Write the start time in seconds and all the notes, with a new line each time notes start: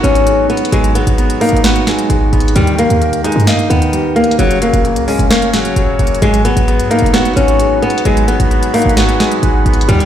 Already playing: F#3 G#3 B3 D#4 F#4
0.03 G#1 F#3 C#4, closed hi-hat
0.15 closed hi-hat
0.27 G#3, closed hi-hat
0.49 B3, closed hi-hat
0.57 closed hi-hat
0.65 closed hi-hat
0.72 G#1 F#3 G#3, closed hi-hat
0.84 closed hi-hat
0.95 G#3 B3, closed hi-hat
1.07 G#1, closed hi-hat
1.18 B3, closed hi-hat
1.30 closed hi-hat
1.41 A#3 D#4, closed hi-hat, open hi-hat
1.49 G#1, closed hi-hat
1.56 closed hi-hat
1.64 B3 F#4, snare, closed hi-hat
1.76 closed hi-hat
1.87 F#3 G#3, snare, closed hi-hat
1.99 closed hi-hat
2.10 G#1 G#3, closed hi-hat
2.33 G#1 B3, closed hi-hat
2.40 closed hi-hat
2.48 closed hi-hat
2.56 D#2 D#3 G3, closed hi-hat
2.67 closed hi-hat
2.79 G3 A#3, closed hi-hat
2.90 D#2, closed hi-hat
3.02 A#4, closed hi-hat
3.13 closed hi-hat
3.24 G#3 D#4, closed hi-hat
3.32 G2, closed hi-hat
3.40 closed hi-hat
3.47 A#3 D#5, snare, closed hi-hat
3.59 closed hi-hat
3.70 D#2 D#3 B3, closed hi-hat
3.82 closed hi-hat
3.93 G3, closed hi-hat
4.16 C#2 A#3, closed hi-hat
4.24 D#2, closed hi-hat
4.31 closed hi-hat
4.39 F#1 C#3 F#3, closed hi-hat
4.51 closed hi-hat
4.62 F#3 A#3, closed hi-hat
4.73 F#1, closed hi-hat
4.85 A#3, closed hi-hat
4.96 C#2, closed hi-hat
5.08 G#3 C#4, open hi-hat
5.19 F#1, closed hi-hat
5.30 A#3 C#5, snare, closed hi-hat
5.42 closed hi-hat
5.53 C#3 F#3, snare, closed hi-hat
5.65 closed hi-hat
5.76 F#1 F#3, closed hi-hat
5.99 F#1 A#3, closed hi-hat
6.07 closed hi-hat
6.14 closed hi-hat
6.22 G#1 F#3 G#3 G#4 F#5 B5, closed hi-hat
6.34 closed hi-hat
6.45 G#3 B3, closed hi-hat
6.57 G#1, closed hi-hat
6.68 B3, closed hi-hat
6.79 G#2, closed hi-hat
6.90 A#3 D#4, closed hi-hat
6.99 F#1, closed hi-hat
7.06 closed hi-hat
7.13 B3 F#4, snare, closed hi-hat
7.25 closed hi-hat
7.36 G#1 F#3 C#4, closed hi-hat
7.48 closed hi-hat
7.60 G#3, closed hi-hat
7.82 B3, closed hi-hat
7.90 closed hi-hat
7.98 closed hi-hat
8.05 G#1 F#3 G#3, closed hi-hat
8.17 closed hi-hat
8.28 G#3 B3, closed hi-hat
8.40 G#1, closed hi-hat
8.51 B3, closed hi-hat
8.63 closed hi-hat
8.74 A#3 D#4, closed hi-hat, open hi-hat
8.82 G#1, closed hi-hat
8.89 closed hi-hat
8.97 B3 F#4, snare, closed hi-hat
9.09 closed hi-hat
9.20 F#3 G#3, snare, closed hi-hat
9.32 closed hi-hat
9.43 G#1 G#3, closed hi-hat
9.66 G#1 B3, closed hi-hat
9.73 closed hi-hat
9.81 closed hi-hat
9.88 D#2 D#3 G3 G4 D#5 A#5, closed hi-hat
10.00 closed hi-hat